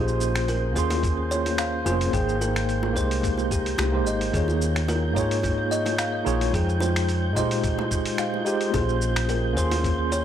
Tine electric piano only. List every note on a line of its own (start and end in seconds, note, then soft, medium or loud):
0.00 0.71 A#3 medium
0.00 0.72 C#4 medium
0.00 0.73 F4 medium
0.00 0.73 G#4 medium
0.00 0.74 C5 medium
0.73 1.81 A#3 medium
0.73 1.82 C#4 medium
0.73 1.83 F4 medium
0.77 1.83 G#4 medium
0.77 1.84 C6 loud
1.85 2.00 A#3 medium
1.85 2.00 C#4 medium
1.85 2.00 F4 medium
1.85 2.01 G#4 medium
1.85 2.01 C5 loud
2.11 2.92 A#3 medium
2.11 2.92 D#4 medium
2.11 2.94 G#4 medium
2.11 2.93 G5 medium
2.16 2.94 C5 medium
2.93 3.89 A#3 medium
2.93 3.89 D#4 medium
2.93 3.90 G4 medium
2.97 3.91 G#3 medium
2.97 3.92 C5 loud
3.92 4.31 G#3 medium
3.92 4.29 A#3 medium
3.92 4.30 D#4 medium
3.92 4.30 G4 medium
3.92 4.31 C5 medium
4.30 5.11 A#3 medium
4.30 5.12 D#4 medium
4.30 5.13 F4 medium
4.35 5.13 G#4 medium
4.35 5.14 C#5 medium
5.14 6.22 A#3 medium
5.14 6.22 D#4 medium
5.14 6.23 F4 medium
5.18 6.24 G#4 medium
5.18 6.25 C#5 loud
6.24 6.40 A#3 medium
6.24 6.40 D#4 medium
6.24 6.41 F4 medium
6.24 6.41 G#4 medium
6.24 6.41 C#5 medium
6.51 7.32 G#3 medium
6.51 7.32 D#4 medium
6.51 7.33 F4 medium
6.55 7.34 C5 medium
6.55 7.34 G5 medium
7.33 8.42 G#3 medium
7.33 8.43 D#4 medium
7.33 8.43 F4 medium
7.38 8.44 G4 medium
7.38 8.45 C5 loud
8.45 8.60 G#3 medium
8.45 8.60 D#4 medium
8.45 8.61 F4 medium
8.45 8.61 G4 medium
8.45 8.61 C5 loud
8.70 9.52 A#3 medium
8.70 9.52 C#4 medium
8.70 9.53 F4 medium
8.75 9.54 G#4 medium
8.75 9.54 C5 medium
9.53 10.25 A#3 medium
9.53 10.25 C#4 medium
9.53 10.25 F4 medium
9.57 10.25 G#4 medium
9.57 10.25 C6 loud